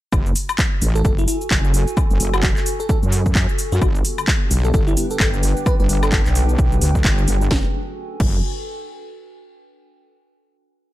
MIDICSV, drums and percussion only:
0, 0, Header, 1, 2, 480
1, 0, Start_track
1, 0, Key_signature, 3, "minor"
1, 0, Tempo, 461538
1, 129, Time_signature, 4, 2, 24, 8
1, 11369, End_track
2, 0, Start_track
2, 0, Title_t, "Drums"
2, 129, Note_on_c, 9, 76, 65
2, 130, Note_on_c, 9, 36, 117
2, 130, Note_on_c, 9, 82, 47
2, 233, Note_off_c, 9, 76, 0
2, 234, Note_off_c, 9, 36, 0
2, 234, Note_off_c, 9, 82, 0
2, 272, Note_on_c, 9, 82, 33
2, 370, Note_off_c, 9, 82, 0
2, 370, Note_on_c, 9, 46, 101
2, 370, Note_on_c, 9, 82, 82
2, 474, Note_off_c, 9, 46, 0
2, 474, Note_off_c, 9, 82, 0
2, 511, Note_on_c, 9, 76, 78
2, 512, Note_on_c, 9, 82, 34
2, 609, Note_on_c, 9, 36, 112
2, 609, Note_on_c, 9, 39, 127
2, 610, Note_off_c, 9, 82, 0
2, 610, Note_on_c, 9, 82, 47
2, 615, Note_off_c, 9, 76, 0
2, 713, Note_off_c, 9, 36, 0
2, 713, Note_off_c, 9, 39, 0
2, 714, Note_off_c, 9, 82, 0
2, 850, Note_on_c, 9, 46, 93
2, 850, Note_on_c, 9, 82, 80
2, 954, Note_off_c, 9, 46, 0
2, 954, Note_off_c, 9, 82, 0
2, 992, Note_on_c, 9, 82, 35
2, 1089, Note_on_c, 9, 36, 118
2, 1090, Note_off_c, 9, 82, 0
2, 1090, Note_on_c, 9, 82, 46
2, 1193, Note_off_c, 9, 36, 0
2, 1194, Note_off_c, 9, 82, 0
2, 1232, Note_on_c, 9, 82, 33
2, 1329, Note_off_c, 9, 82, 0
2, 1329, Note_on_c, 9, 46, 107
2, 1329, Note_on_c, 9, 82, 83
2, 1433, Note_off_c, 9, 46, 0
2, 1433, Note_off_c, 9, 82, 0
2, 1471, Note_on_c, 9, 82, 35
2, 1569, Note_off_c, 9, 82, 0
2, 1569, Note_on_c, 9, 36, 118
2, 1569, Note_on_c, 9, 39, 127
2, 1569, Note_on_c, 9, 82, 47
2, 1673, Note_off_c, 9, 36, 0
2, 1673, Note_off_c, 9, 39, 0
2, 1673, Note_off_c, 9, 82, 0
2, 1711, Note_on_c, 9, 82, 33
2, 1809, Note_off_c, 9, 82, 0
2, 1809, Note_on_c, 9, 46, 92
2, 1809, Note_on_c, 9, 82, 82
2, 1913, Note_off_c, 9, 46, 0
2, 1913, Note_off_c, 9, 82, 0
2, 1951, Note_on_c, 9, 82, 37
2, 2049, Note_off_c, 9, 82, 0
2, 2049, Note_on_c, 9, 36, 119
2, 2049, Note_on_c, 9, 76, 64
2, 2049, Note_on_c, 9, 82, 46
2, 2153, Note_off_c, 9, 36, 0
2, 2153, Note_off_c, 9, 76, 0
2, 2153, Note_off_c, 9, 82, 0
2, 2191, Note_on_c, 9, 82, 32
2, 2289, Note_off_c, 9, 82, 0
2, 2289, Note_on_c, 9, 46, 108
2, 2289, Note_on_c, 9, 82, 78
2, 2393, Note_off_c, 9, 46, 0
2, 2393, Note_off_c, 9, 82, 0
2, 2430, Note_on_c, 9, 76, 81
2, 2430, Note_on_c, 9, 82, 34
2, 2528, Note_on_c, 9, 39, 125
2, 2529, Note_off_c, 9, 82, 0
2, 2529, Note_on_c, 9, 36, 121
2, 2529, Note_on_c, 9, 82, 45
2, 2534, Note_off_c, 9, 76, 0
2, 2632, Note_off_c, 9, 39, 0
2, 2633, Note_off_c, 9, 36, 0
2, 2633, Note_off_c, 9, 82, 0
2, 2670, Note_on_c, 9, 39, 39
2, 2671, Note_on_c, 9, 82, 31
2, 2768, Note_off_c, 9, 82, 0
2, 2768, Note_on_c, 9, 46, 96
2, 2768, Note_on_c, 9, 82, 79
2, 2774, Note_off_c, 9, 39, 0
2, 2872, Note_off_c, 9, 46, 0
2, 2872, Note_off_c, 9, 82, 0
2, 2910, Note_on_c, 9, 82, 35
2, 3009, Note_off_c, 9, 82, 0
2, 3009, Note_on_c, 9, 36, 122
2, 3009, Note_on_c, 9, 82, 46
2, 3113, Note_off_c, 9, 36, 0
2, 3113, Note_off_c, 9, 82, 0
2, 3151, Note_on_c, 9, 82, 33
2, 3248, Note_off_c, 9, 82, 0
2, 3248, Note_on_c, 9, 46, 112
2, 3248, Note_on_c, 9, 82, 80
2, 3352, Note_off_c, 9, 46, 0
2, 3352, Note_off_c, 9, 82, 0
2, 3390, Note_on_c, 9, 36, 63
2, 3390, Note_on_c, 9, 82, 34
2, 3488, Note_off_c, 9, 36, 0
2, 3488, Note_off_c, 9, 82, 0
2, 3488, Note_on_c, 9, 36, 126
2, 3488, Note_on_c, 9, 39, 127
2, 3488, Note_on_c, 9, 82, 47
2, 3592, Note_off_c, 9, 36, 0
2, 3592, Note_off_c, 9, 39, 0
2, 3592, Note_off_c, 9, 82, 0
2, 3630, Note_on_c, 9, 82, 33
2, 3729, Note_off_c, 9, 82, 0
2, 3729, Note_on_c, 9, 46, 94
2, 3729, Note_on_c, 9, 82, 83
2, 3833, Note_off_c, 9, 46, 0
2, 3833, Note_off_c, 9, 82, 0
2, 3871, Note_on_c, 9, 82, 35
2, 3968, Note_on_c, 9, 36, 124
2, 3968, Note_on_c, 9, 76, 66
2, 3969, Note_off_c, 9, 82, 0
2, 3969, Note_on_c, 9, 82, 44
2, 4072, Note_off_c, 9, 36, 0
2, 4072, Note_off_c, 9, 76, 0
2, 4073, Note_off_c, 9, 82, 0
2, 4111, Note_on_c, 9, 82, 30
2, 4209, Note_off_c, 9, 82, 0
2, 4209, Note_on_c, 9, 46, 114
2, 4209, Note_on_c, 9, 82, 76
2, 4313, Note_off_c, 9, 46, 0
2, 4313, Note_off_c, 9, 82, 0
2, 4350, Note_on_c, 9, 76, 77
2, 4351, Note_on_c, 9, 82, 31
2, 4448, Note_on_c, 9, 36, 126
2, 4448, Note_on_c, 9, 39, 124
2, 4449, Note_off_c, 9, 82, 0
2, 4449, Note_on_c, 9, 82, 45
2, 4454, Note_off_c, 9, 76, 0
2, 4552, Note_off_c, 9, 36, 0
2, 4552, Note_off_c, 9, 39, 0
2, 4553, Note_off_c, 9, 82, 0
2, 4688, Note_on_c, 9, 46, 97
2, 4689, Note_on_c, 9, 82, 78
2, 4792, Note_off_c, 9, 46, 0
2, 4793, Note_off_c, 9, 82, 0
2, 4830, Note_on_c, 9, 82, 34
2, 4928, Note_on_c, 9, 36, 127
2, 4929, Note_off_c, 9, 82, 0
2, 4929, Note_on_c, 9, 82, 44
2, 5032, Note_off_c, 9, 36, 0
2, 5033, Note_off_c, 9, 82, 0
2, 5071, Note_on_c, 9, 82, 32
2, 5168, Note_off_c, 9, 82, 0
2, 5168, Note_on_c, 9, 46, 110
2, 5168, Note_on_c, 9, 82, 80
2, 5272, Note_off_c, 9, 46, 0
2, 5272, Note_off_c, 9, 82, 0
2, 5310, Note_on_c, 9, 82, 34
2, 5407, Note_on_c, 9, 39, 124
2, 5408, Note_off_c, 9, 82, 0
2, 5408, Note_on_c, 9, 36, 124
2, 5408, Note_on_c, 9, 82, 45
2, 5511, Note_off_c, 9, 39, 0
2, 5512, Note_off_c, 9, 36, 0
2, 5512, Note_off_c, 9, 82, 0
2, 5550, Note_on_c, 9, 82, 32
2, 5648, Note_off_c, 9, 82, 0
2, 5648, Note_on_c, 9, 46, 101
2, 5648, Note_on_c, 9, 82, 79
2, 5752, Note_off_c, 9, 46, 0
2, 5752, Note_off_c, 9, 82, 0
2, 5790, Note_on_c, 9, 82, 33
2, 5888, Note_off_c, 9, 82, 0
2, 5888, Note_on_c, 9, 36, 123
2, 5888, Note_on_c, 9, 76, 65
2, 5888, Note_on_c, 9, 82, 44
2, 5992, Note_off_c, 9, 36, 0
2, 5992, Note_off_c, 9, 76, 0
2, 5992, Note_off_c, 9, 82, 0
2, 6029, Note_on_c, 9, 82, 30
2, 6128, Note_off_c, 9, 82, 0
2, 6128, Note_on_c, 9, 46, 110
2, 6128, Note_on_c, 9, 82, 76
2, 6232, Note_off_c, 9, 46, 0
2, 6232, Note_off_c, 9, 82, 0
2, 6269, Note_on_c, 9, 76, 79
2, 6270, Note_on_c, 9, 82, 32
2, 6368, Note_off_c, 9, 82, 0
2, 6368, Note_on_c, 9, 36, 121
2, 6368, Note_on_c, 9, 39, 120
2, 6368, Note_on_c, 9, 82, 45
2, 6373, Note_off_c, 9, 76, 0
2, 6472, Note_off_c, 9, 36, 0
2, 6472, Note_off_c, 9, 39, 0
2, 6472, Note_off_c, 9, 82, 0
2, 6509, Note_on_c, 9, 39, 36
2, 6510, Note_on_c, 9, 82, 30
2, 6608, Note_off_c, 9, 82, 0
2, 6608, Note_on_c, 9, 46, 99
2, 6608, Note_on_c, 9, 82, 76
2, 6613, Note_off_c, 9, 39, 0
2, 6712, Note_off_c, 9, 46, 0
2, 6712, Note_off_c, 9, 82, 0
2, 6750, Note_on_c, 9, 82, 32
2, 6848, Note_on_c, 9, 36, 127
2, 6849, Note_off_c, 9, 82, 0
2, 6849, Note_on_c, 9, 82, 44
2, 6952, Note_off_c, 9, 36, 0
2, 6953, Note_off_c, 9, 82, 0
2, 6990, Note_on_c, 9, 82, 31
2, 7088, Note_off_c, 9, 82, 0
2, 7088, Note_on_c, 9, 46, 111
2, 7088, Note_on_c, 9, 82, 76
2, 7192, Note_off_c, 9, 46, 0
2, 7192, Note_off_c, 9, 82, 0
2, 7230, Note_on_c, 9, 36, 65
2, 7231, Note_on_c, 9, 82, 34
2, 7329, Note_off_c, 9, 36, 0
2, 7329, Note_off_c, 9, 82, 0
2, 7329, Note_on_c, 9, 36, 124
2, 7329, Note_on_c, 9, 39, 121
2, 7329, Note_on_c, 9, 82, 43
2, 7433, Note_off_c, 9, 36, 0
2, 7433, Note_off_c, 9, 39, 0
2, 7433, Note_off_c, 9, 82, 0
2, 7471, Note_on_c, 9, 82, 31
2, 7568, Note_on_c, 9, 46, 98
2, 7569, Note_off_c, 9, 82, 0
2, 7569, Note_on_c, 9, 82, 79
2, 7672, Note_off_c, 9, 46, 0
2, 7673, Note_off_c, 9, 82, 0
2, 7710, Note_on_c, 9, 82, 33
2, 7808, Note_on_c, 9, 38, 91
2, 7809, Note_on_c, 9, 36, 114
2, 7814, Note_off_c, 9, 82, 0
2, 7912, Note_off_c, 9, 38, 0
2, 7913, Note_off_c, 9, 36, 0
2, 8528, Note_on_c, 9, 49, 88
2, 8529, Note_on_c, 9, 36, 114
2, 8632, Note_off_c, 9, 49, 0
2, 8633, Note_off_c, 9, 36, 0
2, 11369, End_track
0, 0, End_of_file